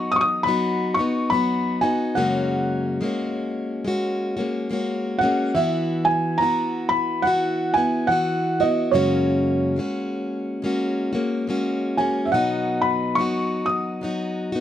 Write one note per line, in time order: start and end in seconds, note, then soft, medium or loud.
0.00 0.45 F#3 soft
0.00 0.46 B3 medium
0.00 0.47 D#4 medium
0.00 0.48 F#4 medium
0.12 0.18 D#6 medium
0.16 0.23 C#6 medium
0.21 0.45 D#6 medium
0.43 0.97 F#3 soft
0.43 0.98 B3 medium
0.43 0.97 B5 medium
0.48 0.98 D#4 medium
0.48 0.96 F#4 medium
0.94 1.31 F#4 soft
0.94 1.30 C#6 medium
0.99 1.31 B3 soft
0.99 1.32 D#4 soft
1.30 1.82 F#3 soft
1.30 1.83 B3 medium
1.30 1.82 D#4 medium
1.30 1.78 B5 medium
1.34 1.80 F#4 soft
1.81 2.17 B3 soft
1.81 2.16 D#4 soft
1.81 2.15 F#4 soft
1.81 2.16 G#5 medium
2.15 3.00 F#2 medium
2.15 3.01 C#3 medium
2.15 2.99 G#3 medium
2.15 3.01 A#3 medium
2.15 3.02 C#4 medium
2.15 3.03 F#4 medium
2.15 2.96 F#5 medium
3.01 3.83 G#3 medium
3.01 3.84 A#3 medium
3.01 3.85 C#4 medium
3.01 3.87 F#4 medium
3.85 4.36 G#3 medium
3.85 4.36 A#3 medium
3.85 4.36 C#4 medium
3.85 4.35 F#4 medium
4.37 4.68 G#3 soft
4.37 4.69 A#3 soft
4.37 4.70 C#4 soft
4.37 4.70 F#4 soft
4.70 5.21 G#3 medium
4.70 5.21 A#3 medium
4.70 5.22 C#4 medium
4.70 5.20 F#4 medium
5.19 5.55 F#4 soft
5.19 5.54 F#5 medium
5.23 5.54 G#3 soft
5.23 5.56 A#3 soft
5.23 5.55 C#4 soft
5.55 6.38 E3 medium
5.55 6.39 B3 medium
5.55 6.40 E4 medium
5.55 6.42 F#4 medium
5.55 6.07 E5 medium
6.05 6.40 G#5 medium
6.38 7.22 E3 medium
6.38 7.23 B3 medium
6.38 6.91 A#5 medium
6.42 7.24 E4 medium
6.42 7.27 F#4 medium
6.89 7.24 B5 medium
7.22 7.75 E3 soft
7.22 7.75 B3 soft
7.22 7.75 E4 medium
7.22 7.76 F#5 medium
7.27 7.73 F#4 medium
7.74 8.09 E4 soft
7.74 8.08 F#4 soft
7.74 8.09 G#5 medium
7.78 8.08 B3 soft
8.07 8.60 E3 soft
8.07 8.60 B3 soft
8.07 8.60 E4 medium
8.07 8.61 F#5 medium
8.12 8.59 F#4 medium
8.60 8.94 B3 soft
8.60 8.94 E4 soft
8.60 8.93 F#4 soft
8.60 8.91 D#5 medium
8.91 9.78 F#2 medium
8.91 9.78 C#3 medium
8.91 9.75 G#3 medium
8.91 9.76 A#3 medium
8.91 9.78 C#4 medium
8.91 9.79 F#4 medium
8.91 9.73 C#5 medium
9.76 10.61 G#3 soft
9.76 10.63 A#3 medium
9.76 10.63 C#4 medium
9.76 10.65 F#4 medium
10.62 11.14 G#3 medium
10.62 11.14 A#3 medium
10.62 11.13 C#4 medium
10.62 11.11 F#4 medium
11.13 11.46 G#3 soft
11.13 11.47 A#3 soft
11.13 11.48 C#4 soft
11.13 11.47 F#4 soft
11.47 11.99 G#3 soft
11.47 11.98 A#3 medium
11.47 11.97 C#4 medium
11.47 11.97 F#4 medium
11.97 12.33 G#3 soft
11.97 12.33 A#3 soft
11.97 12.32 C#4 soft
11.97 12.32 F#4 soft
11.97 12.27 G#5 medium
12.25 12.32 E5 medium
12.32 13.17 B2 medium
12.32 13.15 F#3 medium
12.32 13.17 B3 medium
12.32 13.19 D#4 medium
12.32 13.18 F#4 medium
12.32 12.85 F#5 medium
12.82 13.17 B5 medium
13.15 14.00 F#3 soft
13.15 14.02 B3 soft
13.15 13.64 C#6 medium
13.19 14.04 D#4 medium
13.19 14.04 F#4 medium
13.66 13.98 D#6 medium
14.01 14.53 F#3 soft
14.01 14.54 B3 medium
14.01 14.54 D#4 medium
14.01 14.51 F#4 medium
14.52 14.60 B3 soft
14.52 14.60 D#4 soft
14.52 14.60 F#4 soft